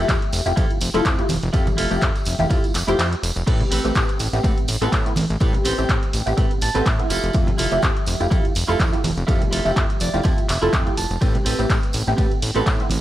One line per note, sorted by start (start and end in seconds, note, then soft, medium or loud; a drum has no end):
0.00 0.43 F3 medium
0.00 0.43 A3 medium
0.00 0.21 E4 medium
0.00 0.22 F4 medium
0.00 0.22 G4 medium
0.00 0.43 G4 medium
0.00 0.22 A4 loud
0.00 0.43 E5 medium
0.09 0.17 F2 loud
0.09 kick loud
0.09 clap loud
0.09 closed hi-hat medium
0.09 ride medium
0.09 tambourine medium
0.22 closed hi-hat soft
0.33 0.41 F1 medium
0.33 open hi-hat loud
0.33 ride medium
0.33 tambourine medium
0.46 0.53 F1 loud
0.46 0.54 A3 medium
0.46 0.54 E4 medium
0.46 0.54 F4 medium
0.46 0.55 G4 medium
0.46 closed hi-hat soft
0.46 tambourine soft
0.56 0.65 F2 loud
0.56 0.78 A3 medium
0.56 0.70 E4 medium
0.56 0.78 E4 medium
0.56 0.70 F4 medium
0.56 0.79 F4 medium
0.56 0.70 G4 medium
0.56 0.79 G4 medium
0.56 0.71 A4 loud
0.56 kick loud
0.56 closed hi-hat medium
0.56 ride medium
0.56 tambourine medium
0.70 0.79 F1 soft
0.70 closed hi-hat soft
0.80 0.90 F1 medium
0.80 muted clean electric guitar stroke soft
0.80 open hi-hat loud
0.80 ride medium
0.80 tambourine medium
0.94 1.01 F1 medium
0.94 1.15 A3 medium
0.94 1.12 E4 medium
0.94 1.15 E4 medium
0.94 1.12 F4 medium
0.94 1.15 F4 medium
0.94 1.12 G4 medium
0.94 1.16 A4 loud
0.94 1.13 A4 loud
0.94 closed hi-hat soft
0.94 tambourine soft
1.05 1.22 F2 medium
1.05 kick loud
1.05 clap loud
1.05 closed hi-hat medium
1.05 ride medium
1.05 tambourine medium
1.18 1.25 A3 medium
1.18 1.25 E4 medium
1.18 1.25 F4 medium
1.18 1.25 G4 loud
1.18 closed hi-hat soft
1.29 1.38 F1 medium
1.29 muted clean electric guitar stroke soft
1.29 open hi-hat loud
1.29 ride medium
1.29 tambourine medium
1.29 high conga medium
1.43 1.50 F1 loud
1.43 closed hi-hat soft
1.43 tambourine soft
1.53 1.67 F2 loud
1.53 1.88 F3 medium
1.53 1.88 A3 medium
1.53 1.66 E4 loud
1.53 1.67 F4 loud
1.53 1.88 G4 medium
1.53 1.67 G4 loud
1.53 1.67 A4 loud
1.53 1.88 E5 medium
1.53 kick loud
1.53 closed hi-hat medium
1.53 ride medium
1.53 tambourine medium
1.67 1.76 F1 soft
1.67 closed hi-hat soft
1.67 tambourine soft
1.67 high conga medium
1.67 low conga medium
1.77 1.87 F1 loud
1.77 2.15 E4 medium
1.77 2.15 F4 medium
1.77 2.15 G4 medium
1.77 2.16 A4 medium
1.77 open hi-hat loud
1.77 ride medium
1.77 tambourine medium
1.90 1.98 F1 loud
1.90 2.36 F3 medium
1.90 2.36 A3 medium
1.90 2.36 G4 medium
1.90 2.36 E5 medium
1.90 closed hi-hat soft
1.90 tambourine soft
2.01 2.11 F2 loud
2.01 kick loud
2.01 clap loud
2.01 closed hi-hat medium
2.01 ride medium
2.01 tambourine medium
2.15 closed hi-hat soft
2.15 tambourine soft
2.25 2.35 F1 medium
2.25 open hi-hat loud
2.25 ride medium
2.25 tambourine loud
2.39 2.47 F1 loud
2.39 2.48 A3 medium
2.39 2.48 E4 medium
2.39 2.48 F4 medium
2.39 2.48 G4 medium
2.39 closed hi-hat soft
2.39 tambourine soft
2.39 high conga medium
2.49 2.59 F2 loud
2.49 2.72 A3 medium
2.49 2.63 E4 medium
2.49 2.72 E4 medium
2.49 2.64 F4 medium
2.49 2.72 F4 medium
2.49 2.64 G4 medium
2.49 2.72 G4 medium
2.49 2.64 A4 medium
2.49 kick loud
2.49 closed hi-hat medium
2.49 ride medium
2.49 tambourine medium
2.64 2.73 F1 soft
2.64 closed hi-hat soft
2.64 tambourine soft
2.74 2.83 F1 medium
2.74 muted clean electric guitar stroke soft
2.74 clap medium
2.74 open hi-hat loud
2.74 ride medium
2.74 tambourine loud
2.87 2.95 F1 loud
2.87 2.94 A3 medium
2.87 3.05 E4 medium
2.87 2.95 E4 medium
2.87 3.05 F4 medium
2.87 2.95 F4 medium
2.87 2.95 G4 loud
2.87 3.06 G4 medium
2.87 3.06 C5 loud
2.87 closed hi-hat soft
2.87 tambourine soft
2.99 3.15 F2 medium
2.99 clap loud
2.99 closed hi-hat medium
2.99 ride medium
2.99 tambourine medium
3.13 closed hi-hat soft
3.22 3.32 F1 medium
3.22 muted clean electric guitar stroke soft
3.22 open hi-hat loud
3.22 ride medium
3.22 tambourine medium
3.36 3.43 F1 loud
3.36 closed hi-hat soft
3.36 tambourine soft
3.46 3.63 A2 loud
3.46 3.81 A3 medium
3.46 3.60 C4 loud
3.46 3.81 C4 medium
3.46 3.60 G4 loud
3.46 3.82 G4 medium
3.46 3.61 A4 loud
3.46 3.81 B4 medium
3.46 3.61 B4 loud
3.46 kick loud
3.46 closed hi-hat medium
3.46 ride medium
3.46 tambourine medium
3.46 crash medium
3.60 closed hi-hat soft
3.60 low conga medium
3.71 3.80 A1 loud
3.71 4.08 C4 medium
3.71 4.09 G4 medium
3.71 4.09 A4 medium
3.71 4.09 B4 medium
3.71 open hi-hat loud
3.71 ride medium
3.71 tambourine medium
3.84 3.92 A1 loud
3.84 4.30 A3 medium
3.84 4.30 C4 medium
3.84 4.30 G4 medium
3.84 4.30 B4 medium
3.84 closed hi-hat soft
3.84 tambourine soft
3.95 4.04 A2 loud
3.95 kick loud
3.95 clap loud
3.95 closed hi-hat medium
3.95 ride medium
3.95 tambourine medium
4.09 closed hi-hat soft
4.19 4.28 A1 medium
4.19 open hi-hat loud
4.19 ride medium
4.19 tambourine medium
4.33 4.40 A1 loud
4.33 4.41 A3 medium
4.33 4.41 B3 medium
4.33 4.42 C4 medium
4.33 4.42 G4 medium
4.33 closed hi-hat soft
4.33 tambourine soft
4.43 4.52 A2 medium
4.43 4.66 A3 medium
4.43 4.66 B3 medium
4.43 4.57 C4 medium
4.43 4.66 C4 medium
4.43 4.57 G4 medium
4.43 4.66 G4 medium
4.43 4.58 A4 medium
4.43 4.58 B4 medium
4.43 kick loud
4.43 closed hi-hat medium
4.43 ride medium
4.43 tambourine medium
4.58 4.66 A1 soft
4.58 closed hi-hat soft
4.68 4.77 A1 medium
4.68 muted clean electric guitar stroke soft
4.68 open hi-hat loud
4.68 ride medium
4.68 tambourine loud
4.81 4.89 A1 loud
4.81 5.02 A3 medium
4.81 5.03 B3 medium
4.81 4.99 C4 medium
4.81 5.03 C4 medium
4.81 4.99 G4 medium
4.81 5.03 A4 loud
4.81 5.00 A4 medium
4.81 5.00 B4 loud
4.81 closed hi-hat soft
4.81 tambourine soft
4.92 5.09 A2 medium
4.92 kick loud
4.92 clap loud
4.92 closed hi-hat medium
4.92 ride medium
4.92 tambourine medium
5.06 5.12 A3 loud
5.06 5.13 B3 medium
5.06 5.13 C4 medium
5.06 5.13 E4 loud
5.06 closed hi-hat soft
5.16 5.25 A1 medium
5.16 muted clean electric guitar stroke soft
5.16 open hi-hat loud
5.16 ride medium
5.16 tambourine loud
5.16 high conga loud
5.29 5.37 A1 loud
5.29 closed hi-hat soft
5.29 tambourine soft
5.40 5.54 A2 loud
5.40 5.75 A3 medium
5.40 5.54 C4 loud
5.40 5.75 C4 medium
5.40 5.54 G4 loud
5.40 5.75 G4 medium
5.40 5.55 A4 loud
5.40 5.75 B4 medium
5.40 5.55 B4 loud
5.40 kick loud
5.40 closed hi-hat medium
5.40 ride medium
5.40 tambourine medium
5.53 5.63 A1 soft
5.53 closed hi-hat soft
5.53 low conga medium
5.64 5.74 A1 medium
5.64 6.02 C4 medium
5.64 6.02 G4 medium
5.64 6.03 A4 medium
5.64 6.03 C5 loud
5.64 open hi-hat loud
5.64 ride medium
5.64 tambourine medium
5.78 5.85 A1 loud
5.78 6.23 A3 medium
5.78 6.24 C4 medium
5.78 6.24 G4 medium
5.78 closed hi-hat soft
5.78 tambourine soft
5.89 5.98 A2 loud
5.89 kick loud
5.89 clap loud
5.89 closed hi-hat medium
5.89 ride medium
5.89 tambourine soft
6.03 closed hi-hat soft
6.13 6.22 A1 medium
6.13 open hi-hat loud
6.13 ride medium
6.13 tambourine medium
6.26 6.34 A1 loud
6.26 6.35 A3 medium
6.26 6.35 B3 medium
6.26 6.35 C4 medium
6.26 6.35 G4 medium
6.26 closed hi-hat soft
6.26 tambourine soft
6.37 6.46 A2 loud
6.37 6.59 A3 medium
6.37 6.59 B3 medium
6.37 6.51 C4 medium
6.37 6.59 C4 medium
6.37 6.51 G4 medium
6.37 6.59 G4 medium
6.37 6.51 A4 medium
6.37 6.51 B4 loud
6.37 kick loud
6.37 closed hi-hat medium
6.37 ride medium
6.37 tambourine medium
6.51 6.60 A1 soft
6.51 closed hi-hat soft
6.61 6.70 A1 medium
6.61 6.85 A5 medium
6.61 muted clean electric guitar stroke soft
6.61 open hi-hat loud
6.61 ride medium
6.61 tambourine medium
6.74 6.82 A1 medium
6.74 6.96 A3 medium
6.74 6.96 B3 medium
6.74 6.92 C4 medium
6.74 6.96 C4 medium
6.74 6.93 G4 medium
6.74 6.96 A4 loud
6.74 6.93 A4 medium
6.74 6.93 B4 loud
6.74 closed hi-hat soft
6.74 tambourine soft
6.86 7.02 A2 medium
6.86 7.09 E5 medium
6.86 kick loud
6.86 clap loud
6.86 closed hi-hat medium
6.86 ride medium
6.86 tambourine medium
6.99 7.06 A3 loud
6.99 7.06 B3 medium
6.99 7.06 C4 medium
6.99 7.06 E4 loud
6.99 closed hi-hat soft
7.10 7.19 F1 medium
7.10 7.50 E4 medium
7.10 7.50 F4 medium
7.10 7.50 G4 medium
7.10 7.50 A4 loud
7.10 open hi-hat loud
7.10 ride medium
7.10 tambourine loud
7.24 7.31 F1 loud
7.24 closed hi-hat soft
7.33 7.51 F2 loud
7.33 7.69 F3 medium
7.33 7.68 A3 medium
7.33 7.69 G4 medium
7.33 7.69 E5 medium
7.33 kick loud
7.33 closed hi-hat medium
7.33 ride medium
7.33 tambourine soft
7.47 closed hi-hat soft
7.47 low conga medium
7.58 7.67 F1 loud
7.58 7.96 E4 medium
7.58 7.96 F4 medium
7.58 7.96 G4 medium
7.58 7.97 A4 loud
7.58 open hi-hat loud
7.58 ride medium
7.58 tambourine medium
7.71 7.79 F1 loud
7.71 8.17 F3 medium
7.71 8.17 A3 medium
7.71 8.17 G4 medium
7.71 8.17 E5 medium
7.71 closed hi-hat soft
7.71 tambourine soft
7.82 7.91 F2 loud
7.82 kick loud
7.82 clap loud
7.82 closed hi-hat medium
7.82 ride medium
7.82 tambourine soft
7.97 closed hi-hat soft
8.06 8.16 F1 medium
8.06 open hi-hat loud
8.06 ride medium
8.06 tambourine loud
8.20 8.27 F1 loud
8.20 8.28 A3 medium
8.20 8.28 E4 medium
8.20 8.29 F4 medium
8.20 8.29 G4 medium
8.20 closed hi-hat soft
8.20 tambourine soft
8.30 8.40 F2 medium
8.30 8.52 A3 medium
8.30 8.44 E4 medium
8.30 8.53 E4 medium
8.30 8.44 F4 medium
8.30 8.53 F4 medium
8.30 8.53 G4 medium
8.30 8.45 G4 medium
8.30 8.45 A4 loud
8.30 kick loud
8.30 closed hi-hat medium
8.30 ride medium
8.30 tambourine medium
8.45 8.54 F1 soft
8.45 closed hi-hat soft
8.55 8.64 F1 medium
8.55 muted clean electric guitar stroke soft
8.55 open hi-hat loud
8.55 ride medium
8.55 tambourine medium
8.67 8.76 F1 medium
8.67 8.89 A3 medium
8.67 8.86 E4 medium
8.67 8.89 E4 medium
8.67 8.86 F4 medium
8.67 8.90 F4 medium
8.67 8.86 G4 medium
8.67 8.90 A4 loud
8.67 8.86 A4 loud
8.67 closed hi-hat soft
8.67 tambourine soft
8.80 8.96 F2 medium
8.80 kick loud
8.80 clap loud
8.80 closed hi-hat medium
8.80 ride medium
8.80 tambourine medium
8.92 8.99 A3 medium
8.92 8.99 E4 medium
8.92 9.00 F4 medium
8.92 9.00 G4 loud
8.92 closed hi-hat soft
9.03 9.12 F1 medium
9.03 muted clean electric guitar stroke soft
9.03 open hi-hat loud
9.03 ride medium
9.03 tambourine medium
9.03 high conga medium
9.17 9.24 F1 loud
9.17 closed hi-hat soft
9.17 tambourine soft
9.27 9.41 F2 loud
9.27 9.62 F3 medium
9.27 9.62 A3 medium
9.27 9.41 E4 loud
9.27 9.41 F4 loud
9.27 9.41 G4 loud
9.27 9.62 G4 medium
9.27 9.41 A4 loud
9.27 9.62 E5 medium
9.27 kick loud
9.27 closed hi-hat medium
9.27 ride medium
9.27 tambourine soft
9.41 9.50 F1 soft
9.41 closed hi-hat soft
9.41 low conga medium
9.51 9.60 F1 medium
9.51 9.89 E4 medium
9.51 9.89 F4 medium
9.51 9.90 G4 medium
9.51 9.90 A4 loud
9.51 open hi-hat loud
9.51 ride medium
9.51 tambourine medium
9.65 9.72 F1 loud
9.65 10.11 F3 medium
9.65 10.10 A3 medium
9.65 10.11 G4 medium
9.65 10.11 E5 medium
9.65 closed hi-hat soft
9.65 tambourine soft
9.76 9.85 F2 loud
9.76 kick loud
9.76 clap loud
9.76 closed hi-hat medium
9.76 ride medium
9.76 tambourine soft
9.90 closed hi-hat soft
10.00 10.09 F1 medium
10.00 10.23 D5 medium
10.00 open hi-hat loud
10.00 ride medium
10.00 tambourine loud
10.13 10.21 F1 loud
10.13 10.22 A3 medium
10.13 10.22 E4 medium
10.13 10.22 F4 medium
10.13 10.22 G4 medium
10.13 closed hi-hat soft
10.13 tambourine soft
10.23 10.33 F2 loud
10.23 10.46 A3 medium
10.23 10.37 E4 medium
10.23 10.46 E4 medium
10.23 10.38 F4 medium
10.23 10.46 F4 medium
10.23 10.38 G4 medium
10.23 10.46 G4 medium
10.23 10.38 A4 loud
10.23 10.47 E5 medium
10.23 kick loud
10.23 closed hi-hat medium
10.23 ride medium
10.23 tambourine medium
10.38 10.47 F1 soft
10.38 closed hi-hat soft
10.48 10.58 F1 medium
10.48 10.71 E5 medium
10.48 muted clean electric guitar stroke soft
10.48 clap medium
10.48 open hi-hat loud
10.48 ride medium
10.48 tambourine medium
10.61 10.69 F1 medium
10.61 10.83 A3 medium
10.61 10.79 E4 medium
10.61 10.83 E4 medium
10.61 10.80 F4 medium
10.61 10.83 F4 medium
10.61 10.80 G4 medium
10.61 10.83 A4 loud
10.61 10.80 A4 medium
10.61 closed hi-hat soft
10.61 tambourine soft
10.73 10.89 F2 medium
10.73 10.96 G5 medium
10.73 kick loud
10.73 clap loud
10.73 closed hi-hat medium
10.73 ride medium
10.73 tambourine soft
10.86 10.93 A3 loud
10.86 10.93 E4 medium
10.86 10.93 F4 medium
10.86 10.93 G4 loud
10.86 closed hi-hat soft
10.97 11.06 F1 medium
10.97 11.20 A5 medium
10.97 muted clean electric guitar stroke soft
10.97 open hi-hat loud
10.97 ride medium
10.97 tambourine medium
11.11 11.18 F1 medium
11.11 closed hi-hat soft
11.11 tambourine soft
11.21 11.38 A2 loud
11.21 11.56 A3 medium
11.21 11.34 C4 loud
11.21 11.56 C4 medium
11.21 11.35 G4 loud
11.21 11.56 G4 medium
11.21 11.35 A4 loud
11.21 11.56 B4 medium
11.21 11.35 B4 loud
11.21 kick loud
11.21 closed hi-hat medium
11.21 ride medium
11.21 tambourine medium
11.35 closed hi-hat soft
11.35 low conga medium
11.45 11.54 A1 loud
11.45 11.83 C4 medium
11.45 11.83 G4 medium
11.45 11.83 A4 medium
11.45 11.84 B4 loud
11.45 open hi-hat loud
11.45 ride medium
11.45 tambourine loud
11.59 11.66 A1 medium
11.59 12.04 A3 medium
11.59 12.04 C4 medium
11.59 12.04 G4 medium
11.59 12.04 B4 medium
11.59 closed hi-hat soft
11.59 tambourine soft
11.70 11.78 A2 loud
11.70 kick loud
11.70 clap loud
11.70 closed hi-hat medium
11.70 ride medium
11.70 tambourine medium
11.83 closed hi-hat soft
11.93 12.03 A1 medium
11.93 open hi-hat loud
11.93 ride medium
11.93 tambourine loud
12.07 12.14 A1 loud
12.07 12.16 A3 medium
12.07 12.16 B3 medium
12.07 12.16 C4 medium
12.07 12.16 G4 medium
12.07 closed hi-hat soft
12.07 tambourine soft
12.17 12.27 A2 loud
12.17 12.40 A3 medium
12.17 12.40 B3 medium
12.17 12.31 C4 medium
12.17 12.40 C4 medium
12.17 12.31 G4 medium
12.17 12.40 G4 loud
12.17 12.31 A4 medium
12.17 12.32 B4 loud
12.17 kick loud
12.17 closed hi-hat medium
12.17 ride medium
12.17 tambourine soft
12.32 12.40 A1 soft
12.32 closed hi-hat soft
12.42 12.51 A1 medium
12.42 muted clean electric guitar stroke soft
12.42 open hi-hat loud
12.42 ride medium
12.42 tambourine medium
12.54 12.63 A1 medium
12.54 12.76 A3 medium
12.54 12.77 B3 medium
12.54 12.73 C4 medium
12.54 12.77 C4 medium
12.54 12.73 G4 medium
12.54 12.73 A4 medium
12.54 12.77 A4 loud
12.54 12.73 B4 loud
12.54 closed hi-hat soft
12.54 tambourine soft
12.66 12.83 A2 medium
12.66 kick loud
12.66 clap loud
12.66 closed hi-hat medium
12.66 ride medium
12.66 tambourine medium
12.80 12.87 A3 loud
12.80 12.87 B3 medium
12.80 12.87 C4 medium
12.80 12.87 E4 loud
12.80 closed hi-hat soft
12.90 12.99 A1 medium
12.90 muted clean electric guitar stroke soft
12.90 open hi-hat loud
12.90 ride medium
12.90 tambourine medium
12.90 high conga medium